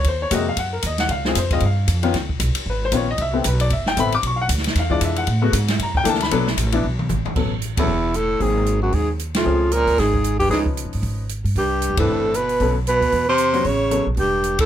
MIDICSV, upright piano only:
0, 0, Header, 1, 2, 480
1, 0, Start_track
1, 0, Tempo, 261666
1, 90, Time_signature, 4, 2, 24, 8
1, 26885, End_track
2, 0, Start_track
2, 0, Title_t, "Upright piano"
2, 0, Program_c, 0, 0
2, 152, Note_on_c, 0, 72, 81
2, 395, Note_off_c, 0, 72, 0
2, 407, Note_on_c, 0, 73, 86
2, 563, Note_on_c, 0, 56, 70
2, 568, Note_on_c, 0, 48, 73
2, 576, Note_on_c, 0, 66, 86
2, 580, Note_off_c, 0, 73, 0
2, 581, Note_on_c, 0, 58, 68
2, 631, Note_on_c, 0, 75, 75
2, 820, Note_off_c, 0, 56, 0
2, 822, Note_off_c, 0, 48, 0
2, 826, Note_off_c, 0, 66, 0
2, 829, Note_off_c, 0, 58, 0
2, 875, Note_off_c, 0, 75, 0
2, 892, Note_on_c, 0, 77, 76
2, 1062, Note_off_c, 0, 77, 0
2, 1081, Note_on_c, 0, 78, 79
2, 1337, Note_on_c, 0, 70, 68
2, 1338, Note_off_c, 0, 78, 0
2, 1524, Note_off_c, 0, 70, 0
2, 1586, Note_on_c, 0, 75, 79
2, 1831, Note_off_c, 0, 75, 0
2, 1835, Note_on_c, 0, 78, 106
2, 2013, Note_off_c, 0, 78, 0
2, 2035, Note_on_c, 0, 77, 78
2, 2294, Note_off_c, 0, 77, 0
2, 2294, Note_on_c, 0, 49, 67
2, 2307, Note_on_c, 0, 60, 66
2, 2311, Note_on_c, 0, 56, 62
2, 2323, Note_on_c, 0, 65, 81
2, 2347, Note_on_c, 0, 68, 76
2, 2468, Note_off_c, 0, 49, 0
2, 2474, Note_off_c, 0, 60, 0
2, 2476, Note_off_c, 0, 56, 0
2, 2482, Note_off_c, 0, 65, 0
2, 2509, Note_off_c, 0, 68, 0
2, 2529, Note_on_c, 0, 72, 78
2, 2781, Note_off_c, 0, 72, 0
2, 2782, Note_on_c, 0, 56, 57
2, 2784, Note_on_c, 0, 60, 68
2, 2791, Note_on_c, 0, 49, 72
2, 2801, Note_on_c, 0, 65, 85
2, 2804, Note_on_c, 0, 75, 90
2, 2951, Note_off_c, 0, 56, 0
2, 2952, Note_off_c, 0, 60, 0
2, 2955, Note_off_c, 0, 49, 0
2, 2961, Note_off_c, 0, 65, 0
2, 2976, Note_off_c, 0, 75, 0
2, 3036, Note_on_c, 0, 77, 68
2, 3725, Note_on_c, 0, 51, 83
2, 3733, Note_on_c, 0, 61, 73
2, 3741, Note_on_c, 0, 59, 76
2, 3743, Note_on_c, 0, 65, 98
2, 3893, Note_off_c, 0, 77, 0
2, 3901, Note_off_c, 0, 51, 0
2, 3905, Note_off_c, 0, 61, 0
2, 3909, Note_off_c, 0, 59, 0
2, 3911, Note_off_c, 0, 65, 0
2, 4947, Note_on_c, 0, 71, 73
2, 5188, Note_off_c, 0, 71, 0
2, 5226, Note_on_c, 0, 72, 98
2, 5361, Note_on_c, 0, 51, 66
2, 5371, Note_on_c, 0, 59, 68
2, 5375, Note_on_c, 0, 65, 73
2, 5383, Note_on_c, 0, 61, 64
2, 5386, Note_off_c, 0, 72, 0
2, 5426, Note_on_c, 0, 73, 75
2, 5614, Note_off_c, 0, 51, 0
2, 5619, Note_off_c, 0, 59, 0
2, 5621, Note_off_c, 0, 65, 0
2, 5625, Note_off_c, 0, 61, 0
2, 5667, Note_off_c, 0, 73, 0
2, 5701, Note_on_c, 0, 75, 87
2, 5862, Note_off_c, 0, 75, 0
2, 5897, Note_on_c, 0, 76, 96
2, 6075, Note_on_c, 0, 66, 46
2, 6102, Note_off_c, 0, 66, 0
2, 6119, Note_on_c, 0, 50, 64
2, 6119, Note_on_c, 0, 59, 66
2, 6127, Note_on_c, 0, 60, 60
2, 6128, Note_on_c, 0, 64, 66
2, 6142, Note_off_c, 0, 76, 0
2, 6167, Note_on_c, 0, 67, 61
2, 6296, Note_off_c, 0, 50, 0
2, 6296, Note_off_c, 0, 59, 0
2, 6300, Note_off_c, 0, 60, 0
2, 6301, Note_off_c, 0, 64, 0
2, 6335, Note_off_c, 0, 67, 0
2, 6366, Note_on_c, 0, 71, 74
2, 6616, Note_off_c, 0, 71, 0
2, 6623, Note_on_c, 0, 74, 89
2, 6802, Note_off_c, 0, 74, 0
2, 6840, Note_on_c, 0, 76, 75
2, 7093, Note_off_c, 0, 76, 0
2, 7114, Note_on_c, 0, 79, 102
2, 7287, Note_off_c, 0, 79, 0
2, 7292, Note_on_c, 0, 50, 73
2, 7297, Note_on_c, 0, 59, 65
2, 7306, Note_on_c, 0, 64, 85
2, 7313, Note_on_c, 0, 60, 68
2, 7330, Note_on_c, 0, 83, 105
2, 7538, Note_off_c, 0, 50, 0
2, 7540, Note_off_c, 0, 59, 0
2, 7545, Note_off_c, 0, 64, 0
2, 7548, Note_off_c, 0, 60, 0
2, 7578, Note_off_c, 0, 83, 0
2, 7607, Note_on_c, 0, 86, 109
2, 7773, Note_off_c, 0, 86, 0
2, 7833, Note_on_c, 0, 85, 89
2, 8004, Note_on_c, 0, 77, 69
2, 8029, Note_off_c, 0, 77, 0
2, 8069, Note_off_c, 0, 85, 0
2, 8099, Note_on_c, 0, 78, 103
2, 8198, Note_off_c, 0, 78, 0
2, 8793, Note_on_c, 0, 77, 74
2, 8985, Note_on_c, 0, 52, 73
2, 8992, Note_on_c, 0, 56, 69
2, 8996, Note_on_c, 0, 65, 74
2, 8999, Note_on_c, 0, 62, 64
2, 9012, Note_on_c, 0, 74, 97
2, 9028, Note_off_c, 0, 77, 0
2, 9194, Note_off_c, 0, 74, 0
2, 9259, Note_on_c, 0, 76, 79
2, 9500, Note_off_c, 0, 76, 0
2, 9502, Note_on_c, 0, 78, 93
2, 9626, Note_off_c, 0, 52, 0
2, 9630, Note_off_c, 0, 56, 0
2, 9632, Note_off_c, 0, 65, 0
2, 9633, Note_off_c, 0, 62, 0
2, 9936, Note_on_c, 0, 57, 72
2, 9937, Note_on_c, 0, 49, 74
2, 9943, Note_on_c, 0, 59, 81
2, 9952, Note_on_c, 0, 66, 88
2, 10117, Note_off_c, 0, 78, 0
2, 10121, Note_off_c, 0, 57, 0
2, 10122, Note_off_c, 0, 49, 0
2, 10125, Note_off_c, 0, 59, 0
2, 10129, Note_off_c, 0, 66, 0
2, 10686, Note_on_c, 0, 82, 86
2, 10932, Note_off_c, 0, 82, 0
2, 10953, Note_on_c, 0, 79, 110
2, 11075, Note_on_c, 0, 52, 77
2, 11082, Note_on_c, 0, 62, 69
2, 11089, Note_on_c, 0, 58, 70
2, 11093, Note_on_c, 0, 69, 86
2, 11124, Note_off_c, 0, 79, 0
2, 11178, Note_on_c, 0, 81, 91
2, 11346, Note_off_c, 0, 52, 0
2, 11349, Note_off_c, 0, 62, 0
2, 11353, Note_off_c, 0, 58, 0
2, 11355, Note_off_c, 0, 69, 0
2, 11417, Note_on_c, 0, 83, 89
2, 11418, Note_off_c, 0, 81, 0
2, 11581, Note_on_c, 0, 54, 87
2, 11586, Note_on_c, 0, 59, 75
2, 11590, Note_on_c, 0, 62, 76
2, 11599, Note_on_c, 0, 69, 91
2, 11839, Note_off_c, 0, 54, 0
2, 11841, Note_off_c, 0, 59, 0
2, 11843, Note_off_c, 0, 62, 0
2, 11848, Note_off_c, 0, 69, 0
2, 12034, Note_off_c, 0, 83, 0
2, 12345, Note_on_c, 0, 52, 79
2, 12350, Note_on_c, 0, 59, 70
2, 12360, Note_on_c, 0, 62, 74
2, 12364, Note_on_c, 0, 64, 83
2, 12525, Note_off_c, 0, 52, 0
2, 12527, Note_off_c, 0, 59, 0
2, 12532, Note_off_c, 0, 62, 0
2, 12534, Note_off_c, 0, 64, 0
2, 13508, Note_on_c, 0, 54, 58
2, 13509, Note_on_c, 0, 59, 51
2, 13515, Note_on_c, 0, 61, 50
2, 13518, Note_on_c, 0, 69, 64
2, 13762, Note_off_c, 0, 54, 0
2, 13763, Note_off_c, 0, 59, 0
2, 13766, Note_off_c, 0, 61, 0
2, 13767, Note_off_c, 0, 69, 0
2, 14274, Note_on_c, 0, 54, 59
2, 14290, Note_on_c, 0, 69, 66
2, 14291, Note_on_c, 0, 59, 50
2, 14297, Note_on_c, 0, 61, 58
2, 14450, Note_off_c, 0, 54, 0
2, 14458, Note_off_c, 0, 59, 0
2, 14458, Note_off_c, 0, 69, 0
2, 14461, Note_off_c, 0, 61, 0
2, 15410, Note_on_c, 0, 58, 48
2, 15413, Note_on_c, 0, 54, 55
2, 15425, Note_on_c, 0, 60, 52
2, 15428, Note_on_c, 0, 68, 62
2, 16744, Note_off_c, 0, 58, 0
2, 16745, Note_off_c, 0, 54, 0
2, 16752, Note_off_c, 0, 60, 0
2, 16753, Note_off_c, 0, 68, 0
2, 17333, Note_on_c, 0, 60, 50
2, 17338, Note_on_c, 0, 53, 59
2, 17352, Note_on_c, 0, 61, 53
2, 17353, Note_on_c, 0, 68, 62
2, 18668, Note_off_c, 0, 60, 0
2, 18670, Note_off_c, 0, 53, 0
2, 18677, Note_off_c, 0, 61, 0
2, 18678, Note_off_c, 0, 68, 0
2, 19249, Note_on_c, 0, 53, 61
2, 19259, Note_on_c, 0, 61, 55
2, 19266, Note_on_c, 0, 71, 67
2, 19272, Note_on_c, 0, 63, 61
2, 20587, Note_off_c, 0, 53, 0
2, 20592, Note_off_c, 0, 61, 0
2, 20596, Note_off_c, 0, 71, 0
2, 20599, Note_off_c, 0, 63, 0
2, 21987, Note_on_c, 0, 52, 63
2, 21990, Note_on_c, 0, 62, 62
2, 21991, Note_on_c, 0, 60, 59
2, 22006, Note_on_c, 0, 71, 73
2, 22615, Note_off_c, 0, 52, 0
2, 22616, Note_off_c, 0, 60, 0
2, 22616, Note_off_c, 0, 62, 0
2, 22624, Note_off_c, 0, 71, 0
2, 23127, Note_on_c, 0, 59, 59
2, 23130, Note_on_c, 0, 50, 65
2, 23139, Note_on_c, 0, 61, 57
2, 23150, Note_on_c, 0, 69, 64
2, 23381, Note_off_c, 0, 59, 0
2, 23382, Note_off_c, 0, 50, 0
2, 23386, Note_off_c, 0, 61, 0
2, 23392, Note_off_c, 0, 69, 0
2, 24814, Note_on_c, 0, 54, 73
2, 24833, Note_on_c, 0, 59, 65
2, 24836, Note_on_c, 0, 61, 72
2, 24836, Note_on_c, 0, 66, 80
2, 25010, Note_off_c, 0, 54, 0
2, 25019, Note_off_c, 0, 59, 0
2, 25020, Note_off_c, 0, 66, 0
2, 25021, Note_off_c, 0, 61, 0
2, 25515, Note_on_c, 0, 54, 52
2, 25519, Note_on_c, 0, 59, 55
2, 25522, Note_on_c, 0, 69, 61
2, 25526, Note_on_c, 0, 61, 53
2, 25777, Note_off_c, 0, 54, 0
2, 25779, Note_off_c, 0, 59, 0
2, 25780, Note_off_c, 0, 69, 0
2, 25782, Note_off_c, 0, 61, 0
2, 26885, End_track
0, 0, End_of_file